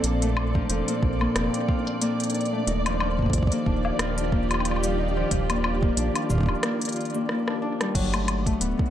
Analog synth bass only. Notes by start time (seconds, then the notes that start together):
0.04 A#1
0.70 F1
1.03 A#1
1.36 F1
2.67 D#1
3.33 A#1
3.66 D#1
3.99 D#1
5.31 D#1
5.97 A#1
6.30 D#1
7.95 G1
8.61 D1